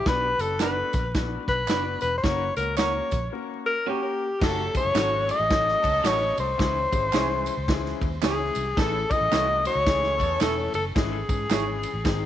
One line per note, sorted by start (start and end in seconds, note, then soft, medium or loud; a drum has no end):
0.06 0.32 B1 loud
0.06 0.26 B3 loud
0.06 0.26 D4 medium
0.06 0.26 F#4 medium
0.06 0.27 B4 loud
0.06 0.42 B4 loud
0.06 kick loud
0.06 snare loud
0.06 closed hi-hat medium
0.38 0.81 F#1 medium
0.38 0.52 B3 medium
0.38 0.53 D4 medium
0.38 0.53 F#4 medium
0.38 0.62 A4 loud
0.38 0.53 B4 medium
0.38 closed hi-hat medium
0.38 tambourine medium
0.60 0.99 B3 medium
0.60 0.73 D4 medium
0.60 0.99 D4 medium
0.60 0.74 F#4 medium
0.60 0.99 F#4 medium
0.60 0.74 B4 medium
0.60 1.12 B4 medium
0.60 0.99 B4 medium
0.60 0.74 D5 medium
0.60 snare loud
0.60 clap medium
0.60 closed hi-hat medium
0.60 tambourine loud
0.93 1.36 A#1 medium
0.93 kick loud
0.93 closed hi-hat medium
0.93 tambourine medium
1.14 1.53 B3 medium
1.14 1.53 D4 medium
1.14 1.53 F#4 medium
1.14 1.53 B4 medium
1.14 kick medium
1.14 snare loud
1.14 closed hi-hat medium
1.14 tambourine medium
1.47 1.69 B1 medium
1.47 1.99 B4 loud
1.47 kick medium
1.47 closed hi-hat medium
1.68 1.95 F#1 medium
1.68 2.07 B3 medium
1.68 1.82 D4 medium
1.68 2.07 D4 medium
1.68 1.82 F#4 medium
1.68 2.07 F#4 medium
1.68 1.83 B4 medium
1.68 2.08 B4 medium
1.68 1.83 D5 loud
1.68 snare loud
1.68 clap medium
1.68 closed hi-hat loud
1.68 tambourine medium
2.01 2.19 E1 medium
2.01 2.17 B4 loud
2.01 closed hi-hat medium
2.01 tambourine medium
2.18 2.24 C5 medium
2.23 2.49 F#1 loud
2.23 2.44 A#3 loud
2.23 2.44 C#4 loud
2.23 2.44 F#4 loud
2.23 2.44 A#4 loud
2.23 2.56 C#5 loud
2.23 kick loud
2.23 snare loud
2.23 closed hi-hat medium
2.23 tambourine soft
2.57 2.99 C#2 loud
2.57 2.70 A#3 medium
2.57 2.70 C#4 medium
2.57 2.70 F#4 medium
2.57 2.76 A#4 medium
2.57 2.71 A#4 medium
2.57 closed hi-hat medium
2.57 tambourine medium
2.77 3.15 A#3 medium
2.77 3.15 C#4 medium
2.77 2.91 C#4 medium
2.77 3.15 F#4 medium
2.77 2.91 F#4 medium
2.77 3.16 A#4 medium
2.77 2.92 A#4 medium
2.77 3.28 C#5 medium
2.77 2.92 C#5 medium
2.77 snare loud
2.77 clap medium
2.77 closed hi-hat medium
2.77 tambourine loud
3.11 3.28 A#1 medium
3.11 kick medium
3.11 closed hi-hat medium
3.11 tambourine medium
3.32 3.69 A#3 medium
3.32 3.70 C#4 medium
3.32 3.70 F#4 medium
3.32 3.70 A#4 medium
3.66 3.86 A#4 loud
3.87 4.25 A#3 medium
3.87 4.00 C#4 loud
3.87 4.25 C#4 medium
3.87 4.00 F#4 loud
3.87 4.46 G4 medium
3.87 4.00 A#4 medium
3.87 4.25 A#4 medium
3.87 4.00 C#5 loud
3.87 4.25 F#5 medium
4.40 4.68 F#1 loud
4.40 4.68 F#3 loud
4.40 4.61 F#3 medium
4.40 4.62 A3 medium
4.40 4.67 C#4 loud
4.40 4.61 C#4 medium
4.40 4.62 F#4 medium
4.40 4.68 A4 loud
4.40 4.62 A4 loud
4.40 4.76 A4 loud
4.40 kick loud
4.40 snare loud
4.40 crash loud
4.40 tambourine soft
4.73 4.87 F#3 medium
4.73 4.92 G#3 medium
4.73 4.87 A3 medium
4.73 4.87 C#4 medium
4.73 4.92 E4 medium
4.73 4.87 F#4 medium
4.73 4.92 G#4 loud
4.73 4.87 A4 medium
4.73 5.27 C#5 loud
4.73 kick medium
4.73 ride medium
4.73 tambourine medium
4.85 4.93 F#1 medium
4.94 5.30 G#1 loud
4.94 5.22 C#3 medium
4.94 5.32 F#3 medium
4.94 5.33 A3 medium
4.94 5.22 A3 medium
4.94 5.08 C#4 medium
4.94 5.33 C#4 medium
4.94 5.33 F#4 medium
4.94 5.22 F#4 loud
4.94 5.09 F#4 loud
4.94 5.33 A4 medium
4.94 5.09 A4 medium
4.94 5.09 C#5 medium
4.94 snare loud
4.94 clap loud
4.94 ride medium
4.94 tambourine loud
5.27 5.45 G#3 loud
5.27 5.45 E4 loud
5.27 5.45 G#4 loud
5.27 ride medium
5.27 tambourine medium
5.31 6.08 D#5 loud
5.39 5.74 A1 medium
5.48 5.76 F#3 medium
5.48 5.87 F#3 medium
5.48 5.87 A3 medium
5.48 5.76 C#4 medium
5.48 5.87 C#4 medium
5.48 5.88 F#4 medium
5.48 5.76 A4 medium
5.48 5.87 A4 medium
5.48 kick loud
5.48 snare loud
5.48 ride medium
5.48 tambourine medium
5.68 snare soft
5.80 6.00 C#2 medium
5.80 6.33 F#3 loud
5.80 6.33 C#4 loud
5.80 6.34 A4 loud
5.80 kick medium
5.85 ride medium
5.85 tambourine soft
6.04 6.30 A1 medium
6.04 6.42 F#3 medium
6.04 6.42 A3 medium
6.04 6.17 C#4 medium
6.04 6.42 C#4 medium
6.04 6.17 F#4 medium
6.04 6.42 F#4 medium
6.04 6.18 A4 medium
6.04 6.42 A4 medium
6.04 6.18 C#5 loud
6.04 6.39 C#5 loud
6.04 snare loud
6.04 clap loud
6.04 ride medium
6.04 tambourine medium
6.38 6.55 C2 medium
6.38 7.99 C5 loud
6.38 ride medium
6.38 tambourine medium
6.58 6.85 C#2 loud
6.58 6.78 E3 medium
6.58 6.79 G#3 medium
6.58 6.79 C#4 medium
6.58 6.79 E4 medium
6.58 6.79 G#4 loud
6.58 kick loud
6.58 snare loud
6.58 ride medium
6.91 7.09 G#1 medium
6.91 7.05 E3 medium
6.91 7.05 G#3 medium
6.91 7.05 C#4 medium
6.91 7.05 E4 medium
6.91 7.05 G#4 medium
6.91 kick medium
6.91 ride medium
6.91 tambourine medium
7.13 7.48 C2 medium
7.13 7.51 E3 loud
7.13 7.51 G#3 medium
7.13 7.27 C#4 medium
7.13 7.51 C#4 medium
7.13 7.51 E4 medium
7.13 7.27 E4 loud
7.13 7.51 G#4 loud
7.13 7.27 G#4 medium
7.13 7.27 C#5 loud
7.13 snare loud
7.13 clap loud
7.13 ride medium
7.13 tambourine loud
7.46 ride medium
7.46 tambourine medium
7.57 7.92 C#2 medium
7.68 8.06 E3 medium
7.68 8.06 G#3 medium
7.68 8.06 C#4 medium
7.68 8.06 E4 medium
7.68 8.06 G#4 loud
7.68 kick medium
7.68 snare loud
7.68 ride medium
7.68 tambourine medium
7.85 snare soft
8.01 8.18 D#2 medium
8.01 kick medium
8.01 ride medium
8.22 8.49 C#2 medium
8.22 8.60 E3 medium
8.22 8.60 G#3 medium
8.22 8.35 C#4 medium
8.22 8.60 C#4 medium
8.22 8.36 E4 medium
8.22 8.60 E4 medium
8.22 8.60 G#4 medium
8.22 8.36 G#4 medium
8.22 8.81 G#4 loud
8.22 8.36 C#5 loud
8.22 snare loud
8.22 clap loud
8.22 ride medium
8.22 tambourine medium
8.55 8.73 C2 medium
8.55 ride medium
8.55 tambourine medium
8.76 9.03 A1 loud
8.76 8.97 E3 medium
8.76 9.04 E3 loud
8.76 8.97 A3 medium
8.76 9.03 C#4 loud
8.76 8.97 C#4 medium
8.76 8.97 E4 medium
8.76 9.03 A4 loud
8.76 8.97 A4 loud
8.76 9.13 A4 loud
8.76 kick loud
8.76 snare loud
8.76 ride medium
8.76 tambourine soft
9.09 9.23 E3 medium
9.09 9.27 G#3 medium
9.09 9.23 A3 medium
9.09 9.23 C#4 medium
9.09 9.27 E4 medium
9.09 9.23 E4 medium
9.09 9.27 G#4 medium
9.09 9.23 A4 medium
9.09 9.66 D#5 loud
9.09 kick medium
9.09 ride medium
9.09 tambourine medium
9.21 9.29 A1 loud
9.32 9.66 C2 loud
9.32 9.69 E3 medium
9.32 9.58 F#3 medium
9.32 9.70 A3 medium
9.32 9.45 C#4 medium
9.32 9.69 C#4 medium
9.32 9.58 D#4 medium
9.32 9.45 E4 medium
9.32 9.70 E4 medium
9.32 9.58 F#4 loud
9.32 9.45 A4 medium
9.32 9.70 A4 medium
9.32 9.45 C#5 loud
9.32 snare loud
9.32 clap loud
9.32 ride medium
9.32 tambourine loud
9.64 9.82 F#3 loud
9.64 9.82 D#4 loud
9.64 9.82 F#4 loud
9.64 10.38 C#5 loud
9.64 ride medium
9.64 tambourine medium
9.75 10.19 C#2 loud
9.86 10.24 E3 medium
9.86 10.13 G#3 medium
9.86 10.24 A3 medium
9.86 10.24 C#4 medium
9.86 10.13 E4 medium
9.86 10.24 E4 medium
9.86 10.13 G#4 loud
9.86 10.24 A4 medium
9.86 kick loud
9.86 snare loud
9.86 ride medium
9.86 tambourine medium
10.04 snare soft
10.18 10.36 E2 medium
10.18 10.70 E3 loud
10.18 10.70 C#4 loud
10.18 10.70 A4 loud
10.18 kick medium
10.18 ride medium
10.18 tambourine soft
10.41 10.67 E1 loud
10.41 10.78 E3 medium
10.41 10.78 A3 medium
10.41 10.54 C#4 loud
10.41 10.78 C#4 medium
10.41 10.54 E4 loud
10.41 10.79 E4 medium
10.41 10.72 A4 loud
10.41 10.79 A4 medium
10.41 10.54 A4 loud
10.41 10.54 C#5 loud
10.41 snare loud
10.41 clap medium
10.41 ride medium
10.41 tambourine medium
10.74 10.91 F#1 medium
10.74 10.84 A4 medium
10.74 ride medium
10.74 tambourine medium
10.95 11.21 G#1 loud
10.95 11.15 E3 loud
10.95 11.15 G#3 loud
10.95 11.15 C#4 medium
10.95 11.15 E4 medium
10.95 11.16 G#4 loud
10.95 12.26 G#4 medium
10.95 kick loud
10.95 snare loud
10.95 ride medium
10.95 tambourine soft
11.29 11.45 G#2 medium
11.29 11.41 E3 medium
11.29 11.41 G#3 medium
11.29 11.42 C#4 medium
11.29 11.42 E4 medium
11.29 11.42 G#4 medium
11.29 kick medium
11.29 ride medium
11.29 tambourine medium
11.50 11.84 G#1 loud
11.50 11.87 E3 medium
11.50 11.87 G#3 medium
11.50 11.87 C#4 medium
11.50 11.63 C#4 medium
11.50 11.87 E4 medium
11.50 11.63 E4 medium
11.50 11.87 G#4 medium
11.50 11.64 G#4 loud
11.50 11.64 C#5 medium
11.50 snare loud
11.50 clap loud
11.50 ride medium
11.50 tambourine loud
11.83 ride medium
11.83 tambourine medium
11.93 12.02 A1 medium
12.04 12.26 G#1 loud
12.04 12.26 D#3 medium
12.04 12.26 G#3 medium
12.04 12.26 C4 medium
12.04 12.26 D#4 medium
12.04 12.26 G#4 loud
12.04 kick medium
12.04 snare loud
12.04 ride medium
12.04 tambourine medium